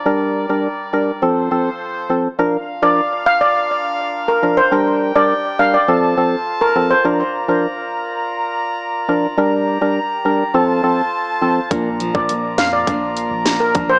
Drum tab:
HH |----------------|----------------|----------------|----------------|
SD |----------------|----------------|----------------|----------------|
BD |----------------|----------------|----------------|----------------|

HH |----------------|x-x-x-x-x-x-x-x-|
SD |----------------|------o-----o---|
BD |----------------|o--o----o-----o-|